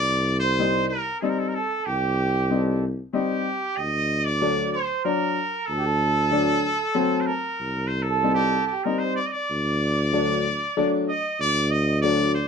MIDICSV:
0, 0, Header, 1, 5, 480
1, 0, Start_track
1, 0, Tempo, 637620
1, 1409, Time_signature, 3, 2, 24, 8
1, 5244, Tempo, 631579
1, 9433, End_track
2, 0, Start_track
2, 0, Title_t, "Muted trumpet"
2, 0, Program_c, 0, 59
2, 0, Note_on_c, 0, 74, 105
2, 286, Note_off_c, 0, 74, 0
2, 299, Note_on_c, 0, 72, 98
2, 647, Note_off_c, 0, 72, 0
2, 666, Note_on_c, 0, 70, 84
2, 899, Note_off_c, 0, 70, 0
2, 907, Note_on_c, 0, 69, 69
2, 972, Note_on_c, 0, 70, 59
2, 984, Note_off_c, 0, 69, 0
2, 1044, Note_on_c, 0, 69, 61
2, 1056, Note_off_c, 0, 70, 0
2, 1114, Note_on_c, 0, 70, 64
2, 1125, Note_off_c, 0, 69, 0
2, 1162, Note_on_c, 0, 69, 81
2, 1173, Note_off_c, 0, 70, 0
2, 1395, Note_on_c, 0, 67, 81
2, 1407, Note_off_c, 0, 69, 0
2, 2148, Note_off_c, 0, 67, 0
2, 2368, Note_on_c, 0, 67, 85
2, 2837, Note_on_c, 0, 75, 108
2, 2848, Note_off_c, 0, 67, 0
2, 3198, Note_on_c, 0, 74, 104
2, 3209, Note_off_c, 0, 75, 0
2, 3552, Note_off_c, 0, 74, 0
2, 3557, Note_on_c, 0, 72, 76
2, 3786, Note_off_c, 0, 72, 0
2, 3796, Note_on_c, 0, 70, 87
2, 4261, Note_on_c, 0, 69, 105
2, 4272, Note_off_c, 0, 70, 0
2, 5426, Note_on_c, 0, 72, 63
2, 5438, Note_off_c, 0, 69, 0
2, 5466, Note_on_c, 0, 70, 89
2, 5478, Note_off_c, 0, 72, 0
2, 5934, Note_on_c, 0, 72, 85
2, 5945, Note_off_c, 0, 70, 0
2, 6047, Note_on_c, 0, 69, 75
2, 6059, Note_off_c, 0, 72, 0
2, 6286, Note_off_c, 0, 69, 0
2, 6291, Note_on_c, 0, 67, 93
2, 6531, Note_off_c, 0, 67, 0
2, 6535, Note_on_c, 0, 67, 63
2, 6666, Note_on_c, 0, 70, 66
2, 6678, Note_off_c, 0, 67, 0
2, 6778, Note_on_c, 0, 72, 80
2, 6789, Note_off_c, 0, 70, 0
2, 6901, Note_off_c, 0, 72, 0
2, 6905, Note_on_c, 0, 74, 85
2, 6988, Note_on_c, 0, 75, 61
2, 6999, Note_off_c, 0, 74, 0
2, 7027, Note_on_c, 0, 74, 91
2, 7039, Note_off_c, 0, 75, 0
2, 8243, Note_off_c, 0, 74, 0
2, 8372, Note_on_c, 0, 75, 88
2, 8592, Note_off_c, 0, 75, 0
2, 8619, Note_on_c, 0, 74, 113
2, 8850, Note_on_c, 0, 75, 94
2, 8861, Note_off_c, 0, 74, 0
2, 9077, Note_off_c, 0, 75, 0
2, 9082, Note_on_c, 0, 74, 110
2, 9305, Note_off_c, 0, 74, 0
2, 9331, Note_on_c, 0, 72, 79
2, 9433, Note_off_c, 0, 72, 0
2, 9433, End_track
3, 0, Start_track
3, 0, Title_t, "Accordion"
3, 0, Program_c, 1, 21
3, 0, Note_on_c, 1, 74, 97
3, 300, Note_off_c, 1, 74, 0
3, 326, Note_on_c, 1, 72, 90
3, 692, Note_on_c, 1, 70, 71
3, 698, Note_off_c, 1, 72, 0
3, 914, Note_off_c, 1, 70, 0
3, 1184, Note_on_c, 1, 69, 76
3, 1351, Note_off_c, 1, 69, 0
3, 1362, Note_on_c, 1, 69, 62
3, 1409, Note_on_c, 1, 67, 77
3, 1413, Note_off_c, 1, 69, 0
3, 1927, Note_on_c, 1, 69, 63
3, 1929, Note_off_c, 1, 67, 0
3, 2144, Note_off_c, 1, 69, 0
3, 2382, Note_on_c, 1, 67, 81
3, 2860, Note_on_c, 1, 75, 83
3, 2871, Note_off_c, 1, 67, 0
3, 3154, Note_off_c, 1, 75, 0
3, 3165, Note_on_c, 1, 75, 57
3, 3213, Note_on_c, 1, 74, 80
3, 3216, Note_off_c, 1, 75, 0
3, 3578, Note_on_c, 1, 72, 78
3, 3582, Note_off_c, 1, 74, 0
3, 3820, Note_off_c, 1, 72, 0
3, 3825, Note_on_c, 1, 70, 84
3, 4299, Note_on_c, 1, 69, 68
3, 4310, Note_off_c, 1, 70, 0
3, 4351, Note_off_c, 1, 69, 0
3, 4351, Note_on_c, 1, 67, 60
3, 4403, Note_off_c, 1, 67, 0
3, 4405, Note_on_c, 1, 69, 94
3, 5488, Note_on_c, 1, 70, 72
3, 5520, Note_off_c, 1, 69, 0
3, 6029, Note_off_c, 1, 70, 0
3, 6040, Note_on_c, 1, 70, 60
3, 6091, Note_off_c, 1, 70, 0
3, 6103, Note_on_c, 1, 69, 88
3, 6580, Note_on_c, 1, 67, 61
3, 6590, Note_off_c, 1, 69, 0
3, 6686, Note_off_c, 1, 67, 0
3, 6691, Note_on_c, 1, 70, 75
3, 6813, Note_off_c, 1, 70, 0
3, 6815, Note_on_c, 1, 72, 78
3, 6931, Note_on_c, 1, 74, 83
3, 6935, Note_off_c, 1, 72, 0
3, 7045, Note_off_c, 1, 74, 0
3, 7063, Note_on_c, 1, 74, 78
3, 8348, Note_off_c, 1, 74, 0
3, 8376, Note_on_c, 1, 75, 84
3, 8617, Note_on_c, 1, 74, 84
3, 8618, Note_off_c, 1, 75, 0
3, 8841, Note_on_c, 1, 75, 87
3, 8858, Note_off_c, 1, 74, 0
3, 9082, Note_on_c, 1, 74, 78
3, 9089, Note_off_c, 1, 75, 0
3, 9433, Note_off_c, 1, 74, 0
3, 9433, End_track
4, 0, Start_track
4, 0, Title_t, "Upright piano"
4, 0, Program_c, 2, 0
4, 442, Note_on_c, 2, 55, 57
4, 447, Note_on_c, 2, 60, 49
4, 450, Note_on_c, 2, 63, 61
4, 685, Note_off_c, 2, 55, 0
4, 687, Note_off_c, 2, 60, 0
4, 689, Note_off_c, 2, 63, 0
4, 919, Note_on_c, 2, 55, 64
4, 922, Note_on_c, 2, 60, 52
4, 923, Note_on_c, 2, 63, 64
4, 1164, Note_off_c, 2, 55, 0
4, 1165, Note_off_c, 2, 60, 0
4, 1166, Note_off_c, 2, 63, 0
4, 1885, Note_on_c, 2, 60, 49
4, 1888, Note_on_c, 2, 55, 47
4, 1894, Note_on_c, 2, 63, 59
4, 2128, Note_off_c, 2, 60, 0
4, 2129, Note_off_c, 2, 55, 0
4, 2132, Note_off_c, 2, 63, 0
4, 2358, Note_on_c, 2, 55, 65
4, 2359, Note_on_c, 2, 60, 55
4, 2366, Note_on_c, 2, 63, 71
4, 2604, Note_off_c, 2, 55, 0
4, 2605, Note_off_c, 2, 60, 0
4, 2608, Note_off_c, 2, 63, 0
4, 3321, Note_on_c, 2, 54, 55
4, 3327, Note_on_c, 2, 57, 50
4, 3328, Note_on_c, 2, 62, 59
4, 3565, Note_off_c, 2, 54, 0
4, 3568, Note_off_c, 2, 57, 0
4, 3569, Note_off_c, 2, 62, 0
4, 3799, Note_on_c, 2, 54, 60
4, 3802, Note_on_c, 2, 62, 59
4, 4044, Note_off_c, 2, 54, 0
4, 4045, Note_off_c, 2, 62, 0
4, 4752, Note_on_c, 2, 54, 56
4, 4755, Note_on_c, 2, 57, 50
4, 4758, Note_on_c, 2, 62, 67
4, 4998, Note_off_c, 2, 54, 0
4, 4999, Note_off_c, 2, 57, 0
4, 5001, Note_off_c, 2, 62, 0
4, 5228, Note_on_c, 2, 54, 77
4, 5230, Note_on_c, 2, 57, 63
4, 5232, Note_on_c, 2, 60, 76
4, 5477, Note_off_c, 2, 54, 0
4, 5478, Note_off_c, 2, 57, 0
4, 5479, Note_off_c, 2, 60, 0
4, 6204, Note_on_c, 2, 55, 53
4, 6207, Note_on_c, 2, 60, 50
4, 6210, Note_on_c, 2, 63, 55
4, 6446, Note_off_c, 2, 55, 0
4, 6447, Note_off_c, 2, 60, 0
4, 6449, Note_off_c, 2, 63, 0
4, 6677, Note_on_c, 2, 55, 59
4, 6679, Note_on_c, 2, 60, 59
4, 6686, Note_on_c, 2, 63, 67
4, 6923, Note_off_c, 2, 55, 0
4, 6924, Note_off_c, 2, 60, 0
4, 6927, Note_off_c, 2, 63, 0
4, 7645, Note_on_c, 2, 54, 60
4, 7651, Note_on_c, 2, 57, 53
4, 7653, Note_on_c, 2, 62, 68
4, 7886, Note_off_c, 2, 54, 0
4, 7889, Note_off_c, 2, 57, 0
4, 7890, Note_off_c, 2, 62, 0
4, 8134, Note_on_c, 2, 54, 66
4, 8134, Note_on_c, 2, 57, 73
4, 8137, Note_on_c, 2, 62, 81
4, 8370, Note_off_c, 2, 54, 0
4, 8370, Note_off_c, 2, 57, 0
4, 8371, Note_off_c, 2, 62, 0
4, 9095, Note_on_c, 2, 54, 62
4, 9098, Note_on_c, 2, 57, 56
4, 9098, Note_on_c, 2, 62, 65
4, 9329, Note_off_c, 2, 54, 0
4, 9330, Note_off_c, 2, 57, 0
4, 9330, Note_off_c, 2, 62, 0
4, 9433, End_track
5, 0, Start_track
5, 0, Title_t, "Tuba"
5, 0, Program_c, 3, 58
5, 0, Note_on_c, 3, 36, 100
5, 833, Note_off_c, 3, 36, 0
5, 1409, Note_on_c, 3, 36, 96
5, 2274, Note_off_c, 3, 36, 0
5, 2853, Note_on_c, 3, 38, 81
5, 3715, Note_off_c, 3, 38, 0
5, 4286, Note_on_c, 3, 38, 94
5, 5147, Note_off_c, 3, 38, 0
5, 5728, Note_on_c, 3, 36, 81
5, 6593, Note_off_c, 3, 36, 0
5, 7173, Note_on_c, 3, 38, 89
5, 8034, Note_off_c, 3, 38, 0
5, 8612, Note_on_c, 3, 38, 95
5, 9433, Note_off_c, 3, 38, 0
5, 9433, End_track
0, 0, End_of_file